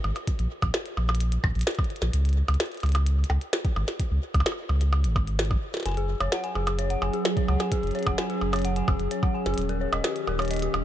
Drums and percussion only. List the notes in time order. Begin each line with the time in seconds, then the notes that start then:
0.04 percussion blips
0.16 closed hi-hat, percussion blips
0.27 kick, closed hi-hat
0.39 closed hi-hat
0.62 kick, closed hi-hat, percussion blips
0.74 snare, closed hi-hat
0.86 closed hi-hat
0.97 percussion blips
1.09 percussion blips
1.15 closed hi-hat
1.21 closed hi-hat
1.32 closed hi-hat
1.44 kick, percussion blips
1.55 closed hi-hat
1.59 closed hi-hat
1.61 closed hi-hat
1.63 snare, closed hi-hat
1.67 closed hi-hat
1.71 closed hi-hat
1.75 kick, closed hi-hat
1.79 closed hi-hat, percussion blips
1.84 closed hi-hat
1.90 closed hi-hat
1.96 closed hi-hat
2.02 snare, closed hi-hat
2.13 closed hi-hat
2.25 closed hi-hat
2.29 closed hi-hat
2.33 closed hi-hat
2.48 closed hi-hat, percussion blips
2.54 closed hi-hat
2.60 snare, closed hi-hat
2.66 closed hi-hat
2.72 closed hi-hat
2.75 closed hi-hat
2.77 closed hi-hat
2.80 closed hi-hat
2.83 closed hi-hat, percussion blips
2.86 closed hi-hat
2.89 closed hi-hat
2.92 closed hi-hat
2.95 closed hi-hat, percussion blips
3.06 closed hi-hat
3.24 closed hi-hat
3.30 percussion blips
3.41 closed hi-hat
3.53 snare, closed hi-hat
3.65 kick, closed hi-hat
3.76 percussion blips
3.88 snare, closed hi-hat
4.00 kick, closed hi-hat
4.34 kick, closed hi-hat, percussion blips
4.40 percussion blips
4.46 snare, closed hi-hat, percussion blips
4.52 percussion blips
4.69 percussion blips
4.81 closed hi-hat
4.93 percussion blips
5.04 closed hi-hat
5.16 kick, percussion blips
5.27 closed hi-hat
5.39 snare, closed hi-hat
5.45 closed hi-hat
5.51 kick, percussion blips
5.74 snare, closed hi-hat
5.77 snare
5.80 snare
5.83 snare
5.86 snare, closed hi-hat
5.88 snare
5.91 snare
5.94 snare, closed hi-hat
6.20 closed hi-hat, percussion blips
6.32 snare, closed hi-hat
6.44 closed hi-hat
6.55 percussion blips
6.67 closed hi-hat, percussion blips
6.79 closed hi-hat
6.90 closed hi-hat
7.02 percussion blips
7.14 closed hi-hat
7.25 snare, closed hi-hat
7.37 kick, closed hi-hat
7.48 percussion blips
7.60 snare, closed hi-hat, percussion blips
7.72 kick, closed hi-hat
7.83 closed hi-hat
7.87 closed hi-hat
7.91 closed hi-hat
7.95 closed hi-hat
7.99 closed hi-hat
8.03 kick, closed hi-hat
8.07 closed hi-hat, percussion blips
8.18 snare, closed hi-hat
8.30 closed hi-hat
8.41 percussion blips
8.53 closed hi-hat, percussion blips
8.56 closed hi-hat
8.59 closed hi-hat
8.62 closed hi-hat
8.65 closed hi-hat
8.76 closed hi-hat
8.88 kick, percussion blips
9.00 closed hi-hat
9.11 closed hi-hat
9.23 kick, percussion blips
9.46 snare, closed hi-hat
9.54 closed hi-hat
9.58 closed hi-hat
9.62 closed hi-hat
9.69 closed hi-hat
9.93 closed hi-hat, percussion blips
10.04 snare, closed hi-hat
10.16 closed hi-hat
10.27 percussion blips
10.39 closed hi-hat, percussion blips
10.42 closed hi-hat
10.45 closed hi-hat
10.48 closed hi-hat
10.51 closed hi-hat
10.54 closed hi-hat
10.57 closed hi-hat
10.59 closed hi-hat
10.62 closed hi-hat
10.74 percussion blips